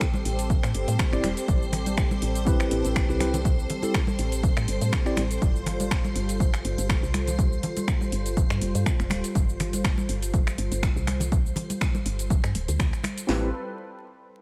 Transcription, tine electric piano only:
1.12 C4 E4 G4 D5
2.46 C4 E4 G4 B4
3.09 C4 E4 G4 B4
3.20 C4 E4 G4 B4
3.83 C4 E4 G4 A4
5.05 C4 E4 G4 D5
13.27 C4 E4 G4 B4

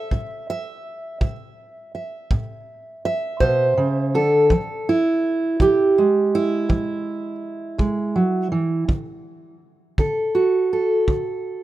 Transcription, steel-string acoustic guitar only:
Already playing: E5
0.12 A2
0.50 E5
1.21 A2 E5
1.95 E5
2.31 A2
3.05 E5
3.40 B2 C5
3.78 C#3
4.15 D3 A4
4.51 E3
4.89 E4
5.61 E3 G4
5.98 G#3
6.35 E4
6.69 E3
7.78 G#3
8.16 F#3
8.52 E3
8.88 D3
9.99 D3 A4
10.35 F#4
10.73 A4
11.08 D3

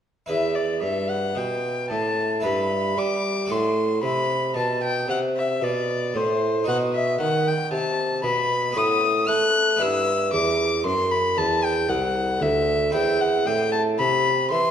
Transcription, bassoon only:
0.29 E2
0.83 G2
1.37 B2
1.91 A2
2.45 G2
2.98 G3
3.51 A2
4.02 C3
4.56 B2
5.08 C3
5.62 B2
6.15 A2
6.68 B2
7.20 D#3
7.71 C3
8.24 B2
8.76 A2
9.29 A3
9.80 G2
10.33 E2
10.85 F#2
11.37 E2
11.89 C2
12.41 D2
12.94 E2
13.47 A2
14.00 C3
14.52 E3

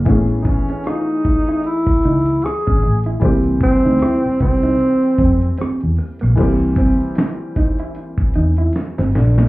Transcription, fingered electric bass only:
0.07 A1
2.05 C#2
2.68 G#1
2.84 A1
3.23 C2
3.86 D2
4.26 muted fingered electric bass stroke
4.41 C2
5.19 F2
5.61 muted fingered electric bass stroke
5.83 E2
6.23 A#1
6.38 C2
8.36 E2
8.99 G1
9.15 A#1

